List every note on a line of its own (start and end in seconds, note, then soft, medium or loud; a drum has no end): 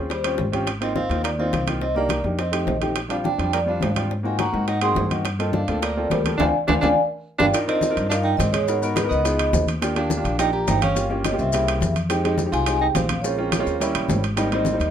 0.00 0.36 D#2 medium
0.00 0.10 C#4 medium
0.00 0.10 F4 medium
0.00 0.11 G#4 medium
0.10 0.50 G3 medium
0.10 0.51 C5 medium
0.10 high bongo medium
0.10 high conga soft
0.10 high timbale medium
0.24 0.44 C4 medium
0.24 0.44 C#4 medium
0.24 0.45 F4 medium
0.24 0.45 G4 medium
0.24 high bongo soft
0.24 high conga soft
0.24 high timbale medium
0.38 1.05 G#1 medium
0.38 high bongo medium
0.38 low bongo medium
0.38 high conga medium
0.52 0.67 C4 medium
0.52 0.67 C#4 medium
0.52 0.68 F4 medium
0.52 0.68 G4 medium
0.52 high conga medium
0.52 high timbale medium
0.67 high bongo medium
0.67 high conga soft
0.67 high timbale medium
0.80 1.01 A#3 medium
0.80 1.01 C4 medium
0.80 0.95 C4 medium
0.80 1.02 D#4 medium
0.80 1.02 F4 medium
0.80 0.97 D#5 medium
0.80 high conga soft
0.80 high timbale medium
0.95 1.22 C4 medium
0.95 1.26 F5 medium
0.95 high bongo medium
0.95 high conga medium
1.09 1.50 D#2 medium
1.09 1.30 A#3 medium
1.09 1.30 C4 medium
1.09 1.30 D#4 medium
1.09 1.31 F4 medium
1.09 high conga soft
1.09 high timbale medium
1.24 1.30 A#3 medium
1.24 1.31 D5 medium
1.24 high bongo medium
1.24 high conga soft
1.24 high timbale medium
1.38 1.59 A#3 medium
1.38 1.59 C4 medium
1.38 1.66 C4 medium
1.38 1.59 D#4 medium
1.38 1.60 F4 medium
1.38 1.66 F5 medium
1.38 high conga soft
1.53 2.19 C2 medium
1.53 high bongo medium
1.53 low bongo medium
1.53 high conga medium
1.53 high timbale medium
1.66 1.81 A#3 medium
1.66 1.82 C4 medium
1.66 1.82 D#4 medium
1.66 1.82 F4 medium
1.66 high conga medium
1.66 high timbale medium
1.81 1.95 C4 medium
1.81 1.97 D#5 medium
1.81 high bongo medium
1.81 high conga soft
1.95 2.15 A#3 medium
1.95 2.23 A#3 medium
1.95 2.16 D4 medium
1.95 2.16 D#4 medium
1.95 2.16 G4 medium
1.95 2.23 D5 medium
1.95 high bongo soft
1.95 high conga soft
2.09 high bongo medium
2.09 high conga medium
2.09 high timbale medium
2.24 2.64 F2 medium
2.24 2.39 A#3 medium
2.24 2.39 D4 medium
2.24 2.39 D#4 medium
2.24 2.39 G4 medium
2.24 high bongo soft
2.24 high conga soft
2.39 2.79 C4 medium
2.39 2.79 D#5 medium
2.39 high bongo medium
2.39 high conga soft
2.39 high timbale medium
2.51 2.72 A3 medium
2.51 2.73 C4 medium
2.51 2.73 D#4 medium
2.51 2.73 G4 medium
2.51 high bongo soft
2.51 high conga soft
2.51 high timbale medium
2.67 3.33 A#1 medium
2.67 high bongo medium
2.67 low bongo medium
2.67 high conga medium
2.67 low timbale medium
2.80 2.96 A3 medium
2.80 2.96 C4 medium
2.80 2.96 D#4 medium
2.80 2.96 G4 medium
2.80 high conga medium
2.80 high timbale medium
2.96 high bongo medium
2.96 high conga soft
2.96 high timbale medium
3.09 3.30 G3 medium
3.09 3.30 C4 medium
3.09 3.30 D4 medium
3.09 3.17 D4 medium
3.09 3.31 F4 medium
3.09 3.17 F5 medium
3.09 high conga soft
3.09 high timbale medium
3.24 3.51 D4 medium
3.24 3.54 G5 medium
3.24 high bongo medium
3.24 high conga medium
3.38 3.79 F2 medium
3.38 3.59 G3 medium
3.38 3.59 C4 medium
3.38 3.59 D4 medium
3.38 3.59 F4 medium
3.38 high conga soft
3.38 high timbale medium
3.53 3.60 A#3 medium
3.53 3.60 D5 medium
3.53 high bongo medium
3.53 high conga soft
3.53 high timbale medium
3.66 3.87 G3 medium
3.66 3.87 C4 medium
3.66 3.87 D4 medium
3.66 3.95 D4 medium
3.66 3.88 F4 medium
3.66 3.95 F5 medium
3.66 high conga soft
3.81 4.48 G#2 medium
3.81 high bongo medium
3.81 low bongo medium
3.81 high conga medium
3.81 high timbale medium
3.81 low timbale medium
3.95 4.10 G3 medium
3.95 4.10 C4 medium
3.95 4.11 D4 medium
3.95 4.11 F4 medium
3.95 high conga medium
3.95 high timbale medium
4.10 high bongo medium
4.10 high conga soft
4.23 4.44 A#3 medium
4.23 4.44 C4 medium
4.23 4.45 D#4 medium
4.23 4.39 F4 medium
4.23 4.45 F#4 medium
4.23 4.40 G#5 medium
4.23 high bongo soft
4.23 high conga soft
4.39 4.66 F#4 medium
4.39 4.66 A#5 medium
4.39 high bongo medium
4.39 high conga medium
4.39 high timbale medium
4.52 4.94 G#2 medium
4.52 4.73 A#3 medium
4.52 4.73 C4 medium
4.52 4.73 D#4 medium
4.52 4.74 F#4 medium
4.52 high bongo soft
4.52 high conga soft
4.68 4.81 D#4 medium
4.68 4.83 F#5 medium
4.68 high bongo medium
4.68 high conga soft
4.68 high timbale medium
4.81 5.02 A#3 medium
4.81 5.02 C4 medium
4.81 5.02 D#4 medium
4.81 5.03 F#4 medium
4.81 5.09 G#4 medium
4.81 5.09 C6 medium
4.81 high bongo soft
4.81 high conga soft
4.81 high timbale medium
4.95 5.63 G2 medium
4.95 high bongo medium
4.95 low bongo medium
4.95 high conga medium
4.95 low timbale medium
5.09 5.24 A#3 medium
5.09 5.25 C4 medium
5.09 5.25 D#4 medium
5.09 5.25 F#4 medium
5.09 high conga medium
5.09 high timbale medium
5.25 high bongo medium
5.25 high conga soft
5.25 high timbale medium
5.39 5.59 A#3 medium
5.39 5.59 C4 medium
5.39 5.53 C4 medium
5.39 5.59 F4 medium
5.39 5.60 A4 medium
5.39 5.54 D#5 medium
5.39 high conga soft
5.39 high timbale medium
5.53 5.80 D4 medium
5.53 5.84 F5 medium
5.53 high bongo medium
5.53 high conga medium
5.68 6.08 D2 medium
5.68 5.88 A#3 medium
5.68 5.88 C4 medium
5.68 5.89 F4 medium
5.68 5.89 A4 medium
5.68 high conga soft
5.68 high timbale medium
5.81 6.09 A#3 medium
5.81 6.12 D5 medium
5.81 high bongo medium
5.81 high conga soft
5.81 high timbale medium
5.96 6.16 A#3 medium
5.96 6.17 C4 medium
5.96 6.17 F4 medium
5.96 6.17 A4 medium
5.96 high conga soft
6.10 6.38 D2 medium
6.10 6.37 G3 medium
6.10 6.41 A#4 medium
6.10 high bongo medium
6.10 low bongo medium
6.10 high conga medium
6.10 high timbale medium
6.10 low timbale medium
6.24 6.39 A#3 medium
6.24 6.38 C4 medium
6.24 6.39 F4 medium
6.24 6.40 A4 medium
6.24 high conga medium
6.24 high timbale medium
6.37 6.50 D2 medium
6.37 6.49 C4 medium
6.37 6.45 D4 medium
6.37 6.49 D4 medium
6.37 6.49 F4 medium
6.37 6.49 D5 medium
6.37 6.49 F5 medium
6.37 6.49 G#5 medium
6.37 low bongo medium
6.37 high conga medium
6.37 high timbale medium
6.67 6.79 D2 medium
6.67 6.77 C4 medium
6.67 6.75 D4 medium
6.67 6.77 D4 medium
6.67 6.77 F4 medium
6.67 6.78 D5 medium
6.67 6.77 F5 medium
6.67 6.77 G#5 medium
6.67 low bongo loud
6.67 high conga medium
6.67 high timbale medium
6.81 6.93 D2 medium
6.81 6.92 C4 medium
6.81 6.88 D4 medium
6.81 6.91 D4 medium
6.81 6.91 F4 medium
6.81 6.92 D5 medium
6.81 6.92 F5 medium
6.81 6.92 G#5 medium
6.81 low bongo medium
6.81 high conga medium
6.81 high timbale medium
7.38 7.50 G1 medium
7.38 7.46 D4 medium
7.38 7.48 D4 medium
7.38 7.48 F4 medium
7.38 7.48 G4 medium
7.38 7.49 D5 medium
7.38 7.49 F5 medium
7.38 7.49 G5 medium
7.38 low bongo medium
7.38 high conga medium
7.38 high timbale medium
7.53 7.63 D4 medium
7.53 7.63 D#4 medium
7.53 7.64 F4 medium
7.53 7.64 A#4 medium
7.53 high bongo medium
7.53 high conga soft
7.53 high timbale medium
7.53 maracas medium
7.67 8.08 C4 medium
7.67 7.82 D4 medium
7.67 7.83 D#4 medium
7.67 7.83 F4 medium
7.67 7.83 A#4 medium
7.67 8.12 D#5 medium
7.67 high conga soft
7.67 high timbale medium
7.81 high bongo medium
7.81 high conga medium
7.81 maracas medium
7.89 8.04 D4 medium
7.89 8.05 D#4 medium
7.89 8.05 F4 medium
7.89 8.05 A#4 medium
7.96 8.37 G2 medium
7.96 high conga soft
7.96 high timbale medium
7.96 maracas soft
8.09 8.16 D4 medium
8.09 8.50 D4 medium
8.09 8.51 D#4 medium
8.09 8.51 F4 medium
8.09 8.51 A#4 medium
8.09 8.17 F5 loud
8.09 high bongo medium
8.09 high conga soft
8.09 high timbale medium
8.09 maracas medium
8.24 8.37 D#4 medium
8.24 8.38 G5 medium
8.24 high conga soft
8.37 9.05 G#2 medium
8.37 8.51 C4 medium
8.37 8.52 D#5 loud
8.37 high bongo medium
8.37 low bongo medium
8.37 high conga medium
8.37 high timbale medium
8.37 maracas medium
8.52 8.79 G#3 medium
8.52 8.80 C#5 loud
8.52 high conga medium
8.52 high timbale medium
8.52 maracas soft
8.67 8.78 B3 medium
8.67 8.78 D#4 medium
8.67 8.78 F#4 medium
8.67 8.79 A#4 medium
8.67 high bongo medium
8.67 high conga soft
8.67 maracas medium
8.82 8.97 B3 medium
8.82 8.97 D#4 medium
8.82 8.98 F#4 medium
8.82 8.98 A#4 medium
8.82 high bongo soft
8.82 high conga soft
8.82 maracas medium
8.95 9.02 G#3 medium
8.95 9.03 B4 medium
8.95 high bongo medium
8.95 high conga medium
8.95 high timbale medium
8.95 maracas medium
9.03 9.18 B3 medium
9.03 9.19 D#4 medium
9.03 9.19 F#4 medium
9.03 9.19 A#4 medium
9.09 9.50 C#2 medium
9.09 9.63 B3 medium
9.09 9.64 D#5 medium
9.09 high bongo soft
9.09 high conga soft
9.09 maracas soft
9.24 9.64 B3 medium
9.24 9.65 D#4 medium
9.24 9.65 F4 medium
9.24 9.65 G#4 medium
9.24 high bongo medium
9.24 high conga soft
9.24 high timbale medium
9.24 maracas medium
9.39 high bongo soft
9.39 high conga soft
9.39 high timbale loud
9.53 10.19 D#2 loud
9.53 high bongo medium
9.53 low bongo medium
9.53 high conga medium
9.53 low timbale medium
9.53 maracas medium
9.67 high conga medium
9.67 high timbale medium
9.67 maracas soft
9.81 9.92 A#3 medium
9.81 9.92 D4 medium
9.81 9.92 F4 medium
9.81 9.92 G4 medium
9.81 high bongo medium
9.81 high conga soft
9.81 high timbale medium
9.81 maracas medium
9.95 10.11 A#3 medium
9.95 10.11 D4 medium
9.95 10.36 D4 medium
9.95 10.11 F4 medium
9.95 10.12 G4 medium
9.95 10.41 F5 medium
9.95 high conga soft
9.95 high timbale medium
10.10 high bongo medium
10.10 high conga medium
10.10 maracas medium
10.16 10.32 A#3 medium
10.16 10.32 D4 medium
10.16 10.33 F4 medium
10.16 10.33 G4 medium
10.24 10.64 A#1 medium
10.24 high conga soft
10.24 high timbale medium
10.24 maracas soft
10.38 10.78 A#3 medium
10.38 10.79 D4 medium
10.38 10.52 D#4 medium
10.38 10.79 F4 medium
10.38 10.79 G4 medium
10.38 10.54 G5 loud
10.38 high bongo medium
10.38 high conga soft
10.38 high timbale medium
10.38 maracas medium
10.52 10.66 G4 medium
10.52 10.67 A#5 medium
10.52 high conga soft
10.67 11.33 G1 medium
10.67 10.81 D#4 medium
10.67 10.82 G5 medium
10.67 high bongo medium
10.67 low bongo medium
10.67 high conga medium
10.67 high timbale medium
10.67 low timbale medium
10.67 maracas medium
10.82 11.09 C#4 medium
10.82 11.08 F5 medium
10.82 high conga medium
10.82 high timbale medium
10.82 maracas soft
10.95 11.05 A#3 medium
10.95 11.06 C#4 medium
10.95 11.06 F4 medium
10.95 11.06 G4 medium
10.95 high bongo medium
10.95 high conga soft
10.95 maracas medium
11.09 11.25 A#3 medium
11.09 11.25 C#4 medium
11.09 11.25 F4 medium
11.09 11.26 G4 medium
11.09 high bongo soft
11.09 high conga soft
11.24 11.39 C#4 medium
11.24 11.38 D#5 medium
11.24 high bongo medium
11.24 high conga medium
11.24 high timbale medium
11.24 maracas medium
11.31 11.47 A#3 medium
11.31 11.47 C#4 medium
11.31 11.47 F4 medium
11.31 11.47 G4 medium
11.39 11.79 C2 medium
11.39 11.92 C4 medium
11.39 11.92 E5 medium
11.39 high bongo soft
11.39 high conga soft
11.39 maracas soft
11.52 11.93 C#3 medium
11.52 11.93 A#3 medium
11.52 11.93 E4 medium
11.52 11.93 G4 medium
11.52 high bongo medium
11.52 high conga soft
11.52 high timbale medium
11.52 maracas medium
11.67 high bongo soft
11.67 high conga soft
11.67 high timbale medium
11.81 12.47 F2 medium
11.81 high bongo medium
11.81 low bongo medium
11.81 high conga medium
11.81 maracas medium
11.94 high conga medium
11.94 high timbale medium
11.94 maracas soft
12.09 12.20 G#3 medium
12.09 12.20 C4 medium
12.09 12.20 D#4 medium
12.09 12.21 G4 medium
12.09 high bongo medium
12.09 high conga soft
12.09 high timbale medium
12.09 maracas medium
12.24 12.39 G#3 loud
12.24 12.39 C4 medium
12.24 12.40 D#4 medium
12.24 12.40 G4 loud
12.24 high conga soft
12.24 high timbale medium
12.38 high bongo medium
12.38 high conga medium
12.38 maracas medium
12.45 12.60 G#3 medium
12.45 12.61 C4 medium
12.45 12.61 D#4 medium
12.45 12.61 G4 medium
12.52 12.92 C2 medium
12.52 12.79 F4 medium
12.52 12.82 G#5 loud
12.52 high conga soft
12.52 high timbale medium
12.52 maracas soft
12.66 13.06 G#3 medium
12.66 13.07 C4 medium
12.66 13.07 D#4 medium
12.66 13.07 G4 medium
12.66 high bongo medium
12.66 high conga soft
12.66 high timbale medium
12.66 maracas medium
12.80 12.88 D#4 medium
12.80 12.86 G5 medium
12.80 high conga soft
12.95 13.61 A#1 medium
12.95 13.22 C4 medium
12.95 13.24 F5 medium
12.95 high bongo medium
12.95 low bongo medium
12.95 high conga medium
12.95 high timbale medium
12.95 low timbale medium
12.95 maracas medium
13.09 high conga medium
13.09 high timbale medium
13.09 maracas soft
13.22 13.34 G#3 medium
13.22 14.19 A#3 medium
13.22 13.34 C4 medium
13.22 13.34 C#4 medium
13.22 13.35 F4 medium
13.22 14.18 C#5 medium
13.22 high bongo medium
13.22 high conga soft
13.22 maracas medium
13.37 13.52 G#3 medium
13.37 13.53 C4 medium
13.37 13.53 C#4 medium
13.37 13.53 F4 medium
13.37 high bongo soft
13.37 high conga soft
13.52 high bongo medium
13.52 high conga medium
13.52 high timbale medium
13.52 maracas medium
13.58 13.74 G#3 medium
13.58 13.74 C4 medium
13.58 13.75 C#4 medium
13.58 13.75 F4 medium
13.66 13.93 D#2 medium
13.66 high bongo soft
13.66 high conga soft
13.66 maracas soft
13.80 14.20 G3 medium
13.80 14.21 A#3 medium
13.80 14.21 C#4 medium
13.80 14.21 E4 loud
13.80 high bongo medium
13.80 high conga soft
13.80 high timbale medium
13.80 maracas medium
13.94 14.08 A#1 medium
13.94 high bongo soft
13.94 high conga soft
13.94 high timbale loud
14.09 14.75 G#1 medium
14.09 high bongo medium
14.09 low bongo medium
14.09 high conga medium
14.09 low timbale medium
14.09 maracas medium
14.24 high timbale medium
14.24 maracas soft
14.36 14.47 G3 medium
14.36 14.47 A#3 medium
14.36 14.48 C4 medium
14.36 14.48 D#4 loud
14.36 high bongo medium
14.36 high conga soft
14.36 high timbale medium
14.36 maracas medium
14.51 14.66 G3 medium
14.51 14.67 A#3 medium
14.51 14.67 C4 medium
14.51 14.91 C4 medium
14.51 14.67 D#4 medium
14.51 14.91 D#5 medium
14.51 high conga soft
14.51 high timbale medium
14.65 high bongo medium
14.65 high conga medium
14.65 maracas medium
14.72 14.87 G3 medium
14.72 14.88 A#3 medium
14.72 14.88 C4 medium
14.72 14.88 D#4 medium
14.80 14.91 D#2 medium
14.80 high conga soft
14.80 high timbale medium
14.80 maracas soft